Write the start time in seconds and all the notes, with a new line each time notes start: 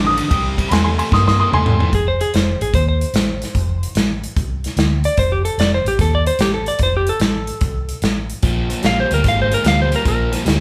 Already playing: A1 F2 D3
0.07 D#6
0.17 F2 D3, ride
0.30 C2 C3 G3, kick, ride
0.57 C3 G3, kick, ride
0.68 E2 C3 A3 B5 C6, ride
0.72 G#5, snare
0.84 G#5 C6
0.98 C3 A3 G#5 C6, ride
1.12 G2 C3 A#3 C6 D#6, kick, snare
1.27 C6 D#6, snare
1.39 C3 A#3 C6 D#6
1.51 E2 C3 A3 G#5 C6, mid tom
1.66 mid tom
1.79 C3 A3, floor tom
1.93 F1 G#4, kick, closed hi-hat
2.08 C5
2.21 G#4, closed hi-hat
2.34 F1 C5, snare, closed hi-hat
2.61 A1 G#4, closed hi-hat
2.74 D#2 C5, kick, closed hi-hat
2.89 C5
3.01 closed hi-hat
3.13 A1, snare, closed hi-hat
3.42 snare, closed hi-hat
3.55 F1, kick, closed hi-hat
3.83 closed hi-hat
3.95 A1, snare, closed hi-hat
4.24 closed hi-hat
4.36 C2, kick, closed hi-hat
4.64 snare, closed hi-hat
4.77 D2, snare, closed hi-hat
5.04 D5, closed hi-hat
5.17 F1 C5, kick, closed hi-hat
5.32 G4
5.45 A4, closed hi-hat
5.58 F1 D5, snare, closed hi-hat
5.74 C5
5.85 A1 G4, closed hi-hat
5.99 D#2 A4, kick, snare, closed hi-hat
6.15 D5
6.27 C5, closed hi-hat
6.39 A1 G4, snare, closed hi-hat
6.54 A4
6.66 D5, closed hi-hat
6.79 F1, kick, closed hi-hat
6.83 C5
6.97 G4
7.07 A4, closed hi-hat
7.20 A1 A4, snare, closed hi-hat
7.47 closed hi-hat
7.61 C2, kick, closed hi-hat
7.89 closed hi-hat
8.02 A1, snare, closed hi-hat
8.30 closed hi-hat
8.43 A#1 A#2 F3, kick, closed hi-hat
8.69 A#2 F3, closed hi-hat
8.83 A#1 A#2 G3 F5, snare, closed hi-hat
9.00 C5
9.11 D2 A#2 G3 A#4, closed hi-hat
9.24 G#1 A#2 G#3, kick, snare, closed hi-hat
9.28 F5
9.42 C5
9.51 A#2 G#3 A#4, closed hi-hat
9.64 D2 A#2 G3, snare, closed hi-hat
9.68 F5
9.82 C5
9.91 A#2 G3, closed hi-hat
9.96 A#4
10.04 A#1 A#2 F3 A#4, kick, closed hi-hat
10.32 A#2 F3, snare, closed hi-hat
10.44 D2 A#2 G3, snare, closed hi-hat